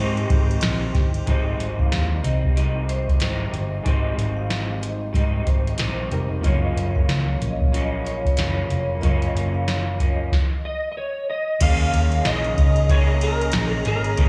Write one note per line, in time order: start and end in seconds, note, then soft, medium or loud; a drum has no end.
0.00 0.24 G#2 loud
0.00 1.27 D#3 medium
0.00 0.59 G#3 loud
0.00 1.22 G#3 medium
0.00 1.23 C4 medium
0.00 1.28 C4 medium
0.00 1.23 D#4 medium
0.00 1.29 D#4 loud
0.00 1.24 G4 medium
0.00 1.24 C5 medium
0.00 1.25 C5 medium
0.17 ride soft
0.30 0.56 G#1 loud
0.30 kick loud
0.30 ride medium
0.51 ride soft
0.61 0.88 A#1 medium
0.61 snare loud
0.61 ride medium
0.95 1.20 G1 medium
0.95 kick medium
0.95 snare soft
0.95 ride soft
1.14 ride soft
1.26 1.53 G#1 medium
1.26 2.24 G#2 medium
1.26 2.24 D#3 medium
1.26 2.24 G3 medium
1.26 3.81 G#3 medium
1.26 2.24 C4 medium
1.26 3.81 D#4 medium
1.26 2.22 D#4 medium
1.26 3.82 G4 medium
1.26 1.57 D#5 medium
1.26 kick medium
1.26 closed hi-hat medium
1.31 3.83 C5 medium
1.60 1.85 G#1 medium
1.60 closed hi-hat medium
1.79 2.09 F5 medium
1.79 kick medium
1.92 2.18 D#2 medium
1.92 snare medium
1.92 closed hi-hat medium
2.23 3.17 C2 medium
2.23 2.56 G3 soft
2.23 2.57 C4 soft
2.23 2.56 D#4 soft
2.23 2.42 D#5 medium
2.23 closed hi-hat medium
2.44 kick medium
2.56 3.19 D#3 medium
2.56 3.20 G3 medium
2.56 3.21 C4 medium
2.56 3.22 D#4 medium
2.56 2.87 D#5 medium
2.56 closed hi-hat medium
2.89 3.07 C5 medium
2.89 closed hi-hat medium
3.08 kick medium
3.08 closed hi-hat soft
3.20 3.46 G#1 medium
3.20 3.84 D#3 medium
3.20 3.85 G3 medium
3.20 3.86 C4 medium
3.20 3.86 D#4 medium
3.20 3.69 C5 medium
3.20 snare loud
3.20 closed hi-hat medium
3.53 3.79 G1 medium
3.53 closed hi-hat soft
3.83 4.11 G#1 medium
3.83 5.14 G#2 medium
3.83 5.12 D#3 medium
3.83 5.13 G3 medium
3.83 6.06 G#3 medium
3.83 6.07 D#4 medium
3.83 6.08 G4 medium
3.83 4.16 D#5 medium
3.83 kick medium
3.83 closed hi-hat medium
3.88 5.14 C4 medium
3.88 5.15 D#4 medium
3.88 6.09 C5 medium
4.18 5.11 G#1 medium
4.18 closed hi-hat medium
4.36 4.67 F5 medium
4.50 snare medium
4.50 closed hi-hat medium
4.82 5.00 D#5 medium
4.82 closed hi-hat medium
5.13 5.40 G#2 medium
5.13 5.77 D#3 medium
5.13 5.78 G3 medium
5.13 5.79 C4 medium
5.13 5.80 D#4 medium
5.13 5.45 D#5 medium
5.13 kick medium
5.13 closed hi-hat medium
5.46 5.73 G#1 medium
5.46 5.65 C5 medium
5.46 kick medium
5.46 closed hi-hat medium
5.67 closed hi-hat soft
5.78 6.05 A#1 medium
5.78 6.43 D#3 medium
5.78 6.44 G3 medium
5.78 6.44 C4 medium
5.78 6.45 D#4 medium
5.78 6.27 C5 medium
5.78 snare medium
5.78 closed hi-hat medium
6.11 6.37 F1 medium
6.11 6.43 G#3 soft
6.11 6.44 D#4 soft
6.11 6.44 G4 soft
6.11 6.45 A#4 medium
6.11 closed hi-hat soft
6.41 6.70 F#1 medium
6.41 7.72 F#2 medium
6.41 7.71 C#3 medium
6.41 7.72 F3 medium
6.41 8.99 F#3 medium
6.41 8.97 A#3 medium
6.41 8.98 F4 medium
6.41 6.74 D#5 medium
6.41 kick loud
6.41 closed hi-hat medium
6.46 7.74 A#3 medium
6.46 7.75 C#4 medium
6.46 9.00 C#5 medium
6.76 7.02 F#1 medium
6.76 closed hi-hat medium
6.95 7.26 F5 medium
6.95 kick medium
7.08 7.34 C#2 medium
7.08 snare medium
7.08 closed hi-hat medium
7.41 8.34 A#1 medium
7.41 7.59 D#5 medium
7.41 closed hi-hat medium
7.61 kick medium
7.72 8.36 C#3 medium
7.72 8.37 F3 medium
7.72 8.39 A#3 medium
7.72 8.40 C#4 medium
7.72 8.05 D#5 medium
7.72 closed hi-hat medium
8.05 8.23 C#5 medium
8.05 closed hi-hat medium
8.25 kick medium
8.25 closed hi-hat soft
8.37 8.64 F#1 medium
8.37 9.02 C#3 medium
8.37 9.02 F3 medium
8.37 9.03 A#3 medium
8.37 9.04 C#4 medium
8.37 8.86 C#5 medium
8.37 snare medium
8.37 closed hi-hat medium
8.70 8.96 F1 medium
8.70 closed hi-hat soft
9.00 9.28 F#1 medium
9.00 9.99 F#2 medium
9.00 9.99 C#3 medium
9.00 10.00 F3 medium
9.00 10.30 F#3 medium
9.00 10.28 A#3 medium
9.00 10.01 A#3 medium
9.00 9.99 C#4 medium
9.00 10.29 F4 medium
9.00 9.32 D#5 medium
9.00 kick loud
9.00 closed hi-hat medium
9.05 10.30 C#5 medium
9.22 closed hi-hat soft
9.35 10.28 F#1 medium
9.35 closed hi-hat medium
9.54 9.85 F5 medium
9.68 snare medium
9.68 closed hi-hat medium
9.99 10.33 F3 soft
9.99 10.32 A#3 soft
9.99 10.31 C#4 soft
9.99 10.17 D#5 medium
9.99 kick medium
9.99 closed hi-hat medium
10.32 kick loud
10.32 snare medium
10.65 10.89 D#5 medium
10.92 10.97 D#5 medium
10.97 11.29 C#5 medium
11.30 11.62 D#5 medium
11.60 11.87 D#2 loud
11.60 12.25 D#3 medium
11.60 12.25 A#3 medium
11.60 12.26 C#4 medium
11.60 14.29 G#4 medium
11.60 12.28 G#4 medium
11.60 14.16 D#5 medium
11.60 12.28 F5 loud
11.60 14.29 A#5 medium
11.60 kick loud
11.60 crash loud
11.60 ride medium
11.94 12.19 D#2 loud
11.94 ride medium
12.12 ride soft
12.25 12.51 A#1 loud
12.25 12.89 D#3 medium
12.25 12.89 A#3 medium
12.25 12.90 C#4 medium
12.25 12.92 G#4 medium
12.25 12.92 D#5 loud
12.25 snare loud
12.25 ride medium
12.44 ride soft
12.57 13.50 C#2 medium
12.57 kick medium
12.57 ride medium
12.76 ride soft
12.89 13.90 D#3 medium
12.89 13.86 A#3 medium
12.89 13.86 C#4 loud
12.89 13.85 G#4 medium
12.89 12.99 C#5 loud
12.89 kick loud
12.89 ride medium
13.21 13.73 A#4 loud
13.21 ride medium
13.41 ride soft
13.52 13.80 A#1 loud
13.52 snare loud
13.52 ride loud
13.73 13.86 G#4 loud
13.85 14.12 G#1 medium
13.85 14.17 A#3 soft
13.85 14.18 C#4 soft
13.85 14.18 G#4 medium
13.85 14.29 A#4 loud
13.85 snare soft
13.85 ride medium
14.04 ride soft
14.17 14.29 D#2 loud
14.17 14.29 D#3 medium
14.17 14.29 A#3 loud
14.17 14.29 C#4 loud
14.17 14.29 G#4 medium
14.17 14.29 F5 medium
14.17 kick loud
14.17 ride medium